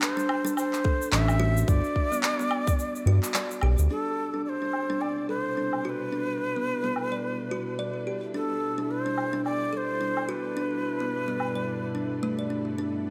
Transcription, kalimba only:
0, 0, Header, 1, 2, 480
1, 0, Start_track
1, 0, Tempo, 555556
1, 1451, Time_signature, 4, 2, 24, 8
1, 11320, End_track
2, 0, Start_track
2, 0, Title_t, "Kalimba"
2, 0, Program_c, 0, 108
2, 147, Note_on_c, 0, 62, 80
2, 375, Note_off_c, 0, 62, 0
2, 385, Note_on_c, 0, 62, 95
2, 483, Note_off_c, 0, 62, 0
2, 729, Note_on_c, 0, 69, 76
2, 960, Note_off_c, 0, 69, 0
2, 968, Note_on_c, 0, 62, 85
2, 1199, Note_off_c, 0, 62, 0
2, 1206, Note_on_c, 0, 66, 106
2, 1288, Note_off_c, 0, 66, 0
2, 1450, Note_on_c, 0, 62, 83
2, 1583, Note_off_c, 0, 62, 0
2, 1830, Note_on_c, 0, 59, 76
2, 2056, Note_off_c, 0, 59, 0
2, 2069, Note_on_c, 0, 59, 76
2, 2296, Note_off_c, 0, 59, 0
2, 2309, Note_on_c, 0, 74, 74
2, 2640, Note_off_c, 0, 74, 0
2, 2653, Note_on_c, 0, 66, 101
2, 2882, Note_off_c, 0, 66, 0
2, 2892, Note_on_c, 0, 74, 95
2, 3121, Note_off_c, 0, 74, 0
2, 3134, Note_on_c, 0, 67, 75
2, 3265, Note_off_c, 0, 67, 0
2, 3375, Note_on_c, 0, 62, 72
2, 3738, Note_off_c, 0, 62, 0
2, 3748, Note_on_c, 0, 62, 66
2, 3806, Note_off_c, 0, 62, 0
2, 3989, Note_on_c, 0, 62, 65
2, 4216, Note_off_c, 0, 62, 0
2, 4232, Note_on_c, 0, 62, 84
2, 4326, Note_off_c, 0, 62, 0
2, 4571, Note_on_c, 0, 69, 67
2, 4801, Note_off_c, 0, 69, 0
2, 4814, Note_on_c, 0, 62, 71
2, 5042, Note_off_c, 0, 62, 0
2, 5054, Note_on_c, 0, 66, 83
2, 5132, Note_off_c, 0, 66, 0
2, 5292, Note_on_c, 0, 62, 67
2, 5424, Note_off_c, 0, 62, 0
2, 5671, Note_on_c, 0, 59, 60
2, 5897, Note_off_c, 0, 59, 0
2, 5908, Note_on_c, 0, 59, 66
2, 6135, Note_off_c, 0, 59, 0
2, 6150, Note_on_c, 0, 74, 61
2, 6481, Note_off_c, 0, 74, 0
2, 6492, Note_on_c, 0, 66, 92
2, 6721, Note_off_c, 0, 66, 0
2, 6730, Note_on_c, 0, 74, 85
2, 6960, Note_off_c, 0, 74, 0
2, 6972, Note_on_c, 0, 67, 65
2, 7104, Note_off_c, 0, 67, 0
2, 7209, Note_on_c, 0, 62, 71
2, 7575, Note_off_c, 0, 62, 0
2, 7586, Note_on_c, 0, 62, 69
2, 7645, Note_off_c, 0, 62, 0
2, 7827, Note_on_c, 0, 62, 66
2, 8051, Note_off_c, 0, 62, 0
2, 8061, Note_on_c, 0, 62, 84
2, 8161, Note_off_c, 0, 62, 0
2, 8403, Note_on_c, 0, 69, 70
2, 8637, Note_off_c, 0, 69, 0
2, 8646, Note_on_c, 0, 62, 66
2, 8878, Note_off_c, 0, 62, 0
2, 8887, Note_on_c, 0, 66, 85
2, 8968, Note_off_c, 0, 66, 0
2, 9129, Note_on_c, 0, 62, 75
2, 9263, Note_off_c, 0, 62, 0
2, 9507, Note_on_c, 0, 59, 64
2, 9735, Note_off_c, 0, 59, 0
2, 9745, Note_on_c, 0, 59, 64
2, 9974, Note_off_c, 0, 59, 0
2, 9983, Note_on_c, 0, 74, 60
2, 10317, Note_off_c, 0, 74, 0
2, 10323, Note_on_c, 0, 62, 68
2, 10452, Note_off_c, 0, 62, 0
2, 10566, Note_on_c, 0, 57, 91
2, 10694, Note_off_c, 0, 57, 0
2, 10702, Note_on_c, 0, 74, 66
2, 10801, Note_off_c, 0, 74, 0
2, 10802, Note_on_c, 0, 62, 65
2, 10939, Note_off_c, 0, 62, 0
2, 11046, Note_on_c, 0, 62, 71
2, 11320, Note_off_c, 0, 62, 0
2, 11320, End_track
0, 0, End_of_file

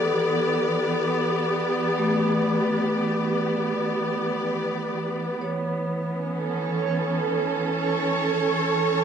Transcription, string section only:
0, 0, Header, 1, 2, 480
1, 0, Start_track
1, 0, Tempo, 500000
1, 8679, End_track
2, 0, Start_track
2, 0, Title_t, "String section"
2, 0, Program_c, 0, 48
2, 0, Note_on_c, 0, 52, 53
2, 0, Note_on_c, 0, 59, 70
2, 0, Note_on_c, 0, 67, 71
2, 0, Note_on_c, 0, 74, 72
2, 5197, Note_off_c, 0, 67, 0
2, 5199, Note_off_c, 0, 52, 0
2, 5201, Note_off_c, 0, 74, 0
2, 5228, Note_on_c, 0, 52, 62
2, 5880, Note_on_c, 0, 61, 68
2, 6135, Note_on_c, 0, 69, 75
2, 7497, Note_on_c, 0, 73, 85
2, 7747, Note_off_c, 0, 59, 0
2, 8679, Note_off_c, 0, 52, 0
2, 8679, Note_off_c, 0, 61, 0
2, 8679, Note_off_c, 0, 69, 0
2, 8679, Note_off_c, 0, 73, 0
2, 8679, End_track
0, 0, End_of_file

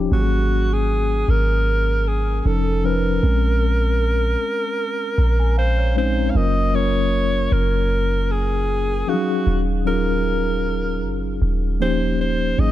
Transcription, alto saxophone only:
0, 0, Header, 1, 2, 480
1, 0, Start_track
1, 0, Tempo, 779221
1, 70, Time_signature, 4, 2, 24, 8
1, 7834, End_track
2, 0, Start_track
2, 0, Title_t, "Alto saxophone"
2, 0, Program_c, 0, 65
2, 80, Note_on_c, 0, 66, 100
2, 450, Note_on_c, 0, 68, 105
2, 459, Note_off_c, 0, 66, 0
2, 799, Note_on_c, 0, 70, 114
2, 808, Note_off_c, 0, 68, 0
2, 1278, Note_on_c, 0, 68, 95
2, 1287, Note_off_c, 0, 70, 0
2, 1481, Note_off_c, 0, 68, 0
2, 1481, Note_on_c, 0, 68, 77
2, 1515, Note_on_c, 0, 69, 96
2, 1525, Note_off_c, 0, 68, 0
2, 1756, Note_on_c, 0, 70, 108
2, 1765, Note_off_c, 0, 69, 0
2, 3433, Note_off_c, 0, 70, 0
2, 3442, Note_on_c, 0, 72, 102
2, 3659, Note_off_c, 0, 72, 0
2, 3680, Note_on_c, 0, 72, 105
2, 3881, Note_on_c, 0, 77, 83
2, 3890, Note_off_c, 0, 72, 0
2, 3921, Note_on_c, 0, 75, 120
2, 3930, Note_off_c, 0, 77, 0
2, 4159, Note_on_c, 0, 73, 115
2, 4169, Note_off_c, 0, 75, 0
2, 4638, Note_on_c, 0, 70, 105
2, 4647, Note_off_c, 0, 73, 0
2, 5119, Note_on_c, 0, 68, 104
2, 5128, Note_off_c, 0, 70, 0
2, 5598, Note_on_c, 0, 66, 94
2, 5607, Note_off_c, 0, 68, 0
2, 5913, Note_off_c, 0, 66, 0
2, 6078, Note_on_c, 0, 70, 100
2, 7009, Note_off_c, 0, 70, 0
2, 7281, Note_on_c, 0, 72, 107
2, 7499, Note_off_c, 0, 72, 0
2, 7520, Note_on_c, 0, 72, 108
2, 7759, Note_on_c, 0, 75, 122
2, 7768, Note_off_c, 0, 72, 0
2, 7834, Note_off_c, 0, 75, 0
2, 7834, End_track
0, 0, End_of_file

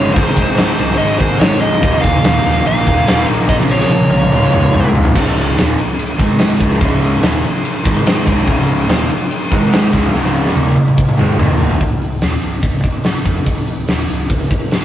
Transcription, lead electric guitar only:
0, 0, Header, 1, 2, 480
1, 0, Start_track
1, 0, Tempo, 416089
1, 183, Time_signature, 4, 2, 24, 8
1, 17127, End_track
2, 0, Start_track
2, 0, Title_t, "Lead electric guitar"
2, 0, Program_c, 0, 29
2, 0, Note_on_c, 0, 73, 86
2, 152, Note_off_c, 0, 73, 0
2, 156, Note_on_c, 0, 72, 98
2, 630, Note_off_c, 0, 72, 0
2, 644, Note_on_c, 0, 72, 98
2, 1121, Note_off_c, 0, 72, 0
2, 1126, Note_on_c, 0, 75, 119
2, 1364, Note_off_c, 0, 75, 0
2, 1368, Note_on_c, 0, 72, 85
2, 1606, Note_off_c, 0, 72, 0
2, 1611, Note_on_c, 0, 73, 71
2, 1849, Note_off_c, 0, 73, 0
2, 1854, Note_on_c, 0, 75, 99
2, 2323, Note_on_c, 0, 77, 115
2, 2351, Note_off_c, 0, 75, 0
2, 3064, Note_off_c, 0, 77, 0
2, 3078, Note_on_c, 0, 77, 113
2, 3741, Note_off_c, 0, 77, 0
2, 4027, Note_on_c, 0, 75, 104
2, 4091, Note_off_c, 0, 75, 0
2, 4284, Note_on_c, 0, 73, 101
2, 4722, Note_off_c, 0, 73, 0
2, 4736, Note_on_c, 0, 73, 84
2, 5649, Note_off_c, 0, 73, 0
2, 17127, End_track
0, 0, End_of_file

